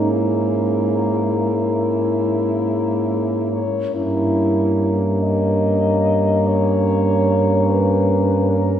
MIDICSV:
0, 0, Header, 1, 5, 480
1, 0, Start_track
1, 0, Tempo, 855920
1, 2215, Tempo, 828729
1, 2216, Time_signature, 12, 3, 24, 8
1, 5023, End_track
2, 0, Start_track
2, 0, Title_t, "French horn"
2, 0, Program_c, 0, 60
2, 0, Note_on_c, 0, 63, 40
2, 58, Note_on_c, 0, 64, 51
2, 67, Note_off_c, 0, 63, 0
2, 1971, Note_off_c, 0, 64, 0
2, 1975, Note_on_c, 0, 73, 43
2, 2212, Note_off_c, 0, 73, 0
2, 2215, Note_on_c, 0, 64, 63
2, 2773, Note_off_c, 0, 64, 0
2, 2943, Note_on_c, 0, 75, 43
2, 3673, Note_on_c, 0, 73, 55
2, 3682, Note_off_c, 0, 75, 0
2, 4391, Note_on_c, 0, 71, 43
2, 4399, Note_off_c, 0, 73, 0
2, 4861, Note_on_c, 0, 70, 49
2, 4870, Note_off_c, 0, 71, 0
2, 5023, Note_off_c, 0, 70, 0
2, 5023, End_track
3, 0, Start_track
3, 0, Title_t, "French horn"
3, 0, Program_c, 1, 60
3, 0, Note_on_c, 1, 61, 29
3, 2035, Note_off_c, 1, 61, 0
3, 2217, Note_on_c, 1, 61, 34
3, 5023, Note_off_c, 1, 61, 0
3, 5023, End_track
4, 0, Start_track
4, 0, Title_t, "French horn"
4, 0, Program_c, 2, 60
4, 0, Note_on_c, 2, 58, 33
4, 2032, Note_off_c, 2, 58, 0
4, 2214, Note_on_c, 2, 58, 37
4, 5023, Note_off_c, 2, 58, 0
4, 5023, End_track
5, 0, Start_track
5, 0, Title_t, "French horn"
5, 0, Program_c, 3, 60
5, 0, Note_on_c, 3, 44, 30
5, 2035, Note_off_c, 3, 44, 0
5, 2219, Note_on_c, 3, 43, 33
5, 5023, Note_off_c, 3, 43, 0
5, 5023, End_track
0, 0, End_of_file